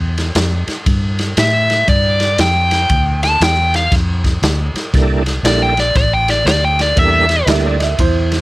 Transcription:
Already playing: E2
0.18 snare, ride
0.35 F2, snare, ride
0.67 muted fingered electric bass stroke, snare, ride
0.86 G2, kick, ride
1.19 snare, ride
1.37 A2 E5, snare, ride
1.70 snare, ride
1.88 G2 D5, kick, ride
2.20 snare, ride
2.38 F2 G5, snare, ride
2.71 snare, ride
2.90 D2, kick, ride
3.23 A5, snare, ride
3.40 E2 G5, snare, ride
3.74 F5, snare, ride
3.92 F2, kick, snare, ride
4.24 kick, snare, ride
4.42 D2, snare, ride
4.74 muted fingered electric bass stroke, snare, ride
4.93 C2 G3 A#3 D4 E4 A4, kick, snare, ride
5.26 snare, ride
5.43 A#1 G3 A#3 D4 E4 A4 D5, snare, ride
5.62 G5
5.77 D5, snare, ride
5.95 A1 D5, kick, snare, ride
6.13 G5
6.28 D5, snare, ride
6.45 D2 D5, snare, ride
6.65 G5
6.79 D5, snare, ride
6.96 E2 G3 A#3 D4 E4 A4 E5, kick, ride
7.29 snare, ride
7.46 D2 G3 A#3 D4 E4 A4 D#5, snare, ride
7.50 E5
7.65 D5
7.79 D#5, snare, ride
7.83 E5
7.99 E2 E4 C5, kick, ride
8.32 snare, ride

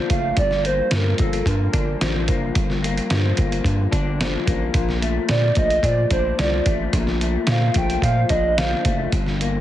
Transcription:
Already playing: A#2 F3 D4
0.09 F#1 A3 F5, kick, closed hi-hat
0.36 G1 G2 D5, kick, closed hi-hat
0.51 snare
0.63 A#3 C5, closed hi-hat
0.91 G2 F3 A#4, snare, closed hi-hat
1.18 G1 A#3 A4, kick, closed hi-hat
1.33 closed hi-hat
1.46 G2 D3 A#4, kick, closed hi-hat
1.73 G1 D4, kick, closed hi-hat
2.00 A1 F3, snare, closed hi-hat
2.28 F#1 A#3, kick, closed hi-hat
2.55 G1 G2, kick, closed hi-hat
2.70 snare
2.82 A#3, closed hi-hat
2.97 closed hi-hat
3.10 G2 F3, snare, closed hi-hat
3.37 G1 A#3, kick, closed hi-hat
3.52 closed hi-hat
3.64 G2 D3, kick, closed hi-hat
3.91 G1 D4, kick, closed hi-hat
4.19 F3, snare, closed hi-hat
4.46 A1 A#3, kick, closed hi-hat
4.74 A#1 A#2, kick, closed hi-hat
4.89 snare
5.02 A3, closed hi-hat
5.29 A#2 F3 D5, snare, closed hi-hat
5.55 A#1 A3 D#5, kick, closed hi-hat
5.70 closed hi-hat
5.83 A#2 F3 D5, kick, closed hi-hat
6.11 A#1 D4 C5, kick, closed hi-hat
6.39 C2 F3 D5, snare, closed hi-hat
6.66 A1 A3, kick, closed hi-hat
6.93 A#1 A#2, kick, closed hi-hat
7.07 snare
7.21 A3, closed hi-hat
7.47 A#2 F3 F5, snare, closed hi-hat
7.74 A#1 A3 G5, kick, closed hi-hat
7.90 closed hi-hat
8.02 A#2 F3 F5, kick, closed hi-hat
8.29 A#1 D4 D#5, kick, closed hi-hat
8.57 F3 F5, snare, closed hi-hat
8.85 F#1 A3, kick, closed hi-hat
9.12 G1 G2, kick, closed hi-hat
9.26 snare
9.40 A#3, closed hi-hat

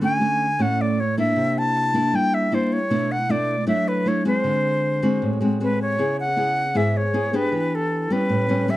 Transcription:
Already playing: D3
0.01 A3 C#4 F#4 G#5
0.21 A3 C#4 F#4
0.59 A2 A3 C#4 F#4 F#5
0.81 D5
1.00 C#5
1.17 A#3 D4 E4 E5
1.36 C3
1.58 A5
1.94 A#3 D4 E4
2.13 G3 G5
2.34 E5
2.52 A#3 D4 E4 C5
2.73 C#5
2.90 B2 A3 D4 E4
3.11 F#5
3.29 A3 D4 E4 D5
3.67 F#3 A3 D4 E4 E5
3.88 B4
4.06 A3 D4 E4 C#5
4.25 G#3 C4 F#4 C5
4.44 D3
5.02 G#3 C4 F#4
5.22 A2
5.41 G#3 C4 F#4
5.60 G#3 C4 F#4 B4
5.82 C#5
5.98 C#3 B3 E4 G#4
6.20 F#5
6.36 B3 E4 G#4
6.74 G#2 B3 E4 G#4 E5
6.97 C#5
7.13 B3 E4 G#4
7.33 B3 D4 G4 B4
7.52 E3
7.75 A4
8.10 G3 B3 C#4 B4
8.29 A2
8.48 G3 B3 C#4
8.68 G3 B3 C#4 E5

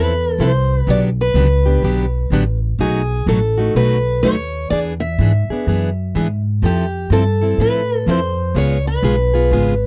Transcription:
Already playing: E2 F3 C4 E4 A4 B4
0.38 C2 F3 C4 E4 A4 C5
0.78 B4
0.87 B1 D3 F#3 B3 D4 G4 D5
1.21 B4
1.34 C#2 D3 F#3 B3 D4 G4
1.66 B3 D4 G4
1.82 B1 D3 F#3 B3 D4 G4
2.30 A1 D3 F#3 B3 D4 G4
2.79 B1 B2 F#3 A3 D#4 F#4 G#4
3.26 A1 B2 F#3 A3 D#4 F#4 A4
3.58 A3 D#4 F#4
3.75 B1 B2 F#3 A3 D#4 F#4 B4
4.23 D#2 B2 F#3 A3 D#4 F#4 C#5
4.70 E2 E3 B3 D4 G#4 D5
5.00 E5
5.19 G#2 E3 B3 D4 G#4
5.49 B3 D4 G#4, muted upright bass stroke
5.67 F#2 E3 B3 D4 G#4
6.15 G#2 E3 B3 D4 G#4
6.62 F2 F3 C4 E4 G4 A4
7.10 G2 F3 C4 E4 A4
7.41 C4 E4 A4
7.58 A2 F3 C4 E4 A4 B4
8.06 F2 F3 C4 E4 A4 C5
8.55 C#2 C#3 G#3 B3 F4 G#4 C#5
8.87 B4
9.02 B1 C#3 G#3 B3 F4 G#4
9.34 B3 F4 G#4
9.51 G#1 C#3 G#3 B3 F4 G#4

